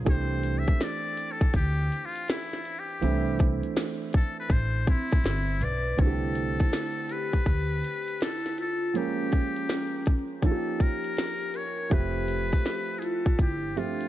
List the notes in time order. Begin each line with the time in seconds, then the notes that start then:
0.05 C2 E3 A3 C4 D4 G4, kick, closed hi-hat
0.09 C5
0.43 closed hi-hat
0.59 E5
0.68 kick, closed hi-hat
0.81 D5, snare, closed hi-hat
1.17 closed hi-hat
1.32 A4
1.41 kick
1.54 D2 G4, kick, closed hi-hat
1.92 closed hi-hat
2.05 F4
2.16 closed hi-hat
2.28 E4, snare, closed hi-hat
2.53 snare
2.65 closed hi-hat
2.79 G4
3.01 C2 E3 A3 C4 D4 E4, closed hi-hat
3.39 kick, closed hi-hat
3.63 closed hi-hat
3.76 snare, closed hi-hat
4.13 A4, kick, closed hi-hat
4.40 B4
4.50 A1 C5, kick, closed hi-hat
4.87 C4 E4, kick, closed hi-hat
5.12 kick, closed hi-hat
5.24 G1, snare, closed hi-hat
5.61 B1 B4 D5, closed hi-hat
5.97 C2 D3 A3 C4 D4 E4 F#4 A4, kick, closed hi-hat
6.07 G4
6.35 closed hi-hat
6.60 kick, closed hi-hat
6.73 snare, closed hi-hat
7.09 G4 B4, closed hi-hat
7.33 kick
7.46 D2, kick, closed hi-hat
7.85 closed hi-hat
8.08 closed hi-hat
8.21 E4 A4, snare, closed hi-hat
8.46 snare
8.58 F4 A4, closed hi-hat
8.94 F3 G#3 A#3 C#4 G4 A#4, closed hi-hat
9.32 kick, closed hi-hat
9.56 closed hi-hat
9.69 snare, closed hi-hat
10.06 kick, closed hi-hat
10.42 F3 A#3 C#4 D#4 F4 A4, kick, closed hi-hat
10.51 G4
10.80 G4 A#4, kick, closed hi-hat
11.04 closed hi-hat
11.17 snare, closed hi-hat
11.54 A#4 C#5, closed hi-hat
11.90 F1 F3 A3 C4 G4 B4 E5, kick, closed hi-hat
12.28 closed hi-hat
12.52 kick, closed hi-hat
12.65 snare, closed hi-hat
12.97 E4 G#4
13.02 F4 A4, closed hi-hat
13.26 kick
13.39 G1 E4 G4, kick, closed hi-hat
13.76 F3 A3 C4 D4 F4 G4 E5, closed hi-hat
14.01 closed hi-hat